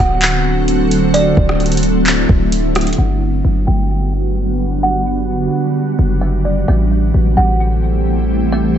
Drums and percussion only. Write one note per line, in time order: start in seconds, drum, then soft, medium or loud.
0.22 clap loud
0.22 closed hi-hat medium
0.68 closed hi-hat medium
0.91 closed hi-hat medium
1.14 closed hi-hat medium
1.37 kick loud
1.49 cross-stick medium
1.60 closed hi-hat soft
1.66 closed hi-hat medium
1.72 closed hi-hat medium
1.77 closed hi-hat medium
1.83 closed hi-hat medium
2.06 clap loud
2.06 closed hi-hat medium
2.29 kick loud
2.52 closed hi-hat medium
2.75 cross-stick medium
2.75 closed hi-hat medium
2.81 closed hi-hat medium
2.87 closed hi-hat medium
2.93 closed hi-hat medium